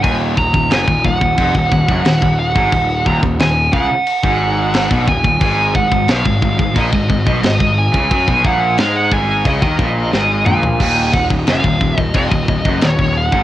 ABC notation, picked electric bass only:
X:1
M:4/4
L:1/16
Q:1/4=89
K:Ebm
V:1 name="Picked electric bass" clef=bass
E,,,2 E,,, E,,, G,,, E,,, E,,, E,,, F,,, E,,, E,,, G,,, E,,, E,,,2 A,,, | E,,,2 E,,, E,,, E,,,2 D,, z2 A,,,4 C,, E,,, E,,, | A,,,2 A,,, A,,, C,, A,,, A,,, A,,, B,,, A,,, A,,, C,, A,,, A,,,2 D,, | G,, C,, B,,,2 A,,2 A,,,2 D,, E,, B,,,2 A,,,2 B,,,2 |
E,,,2 E,,, E,,, G,,, E,,, E,,, E,,, F,,, E,,, E,,, G,,, E,,, E,,,2 A,,, |]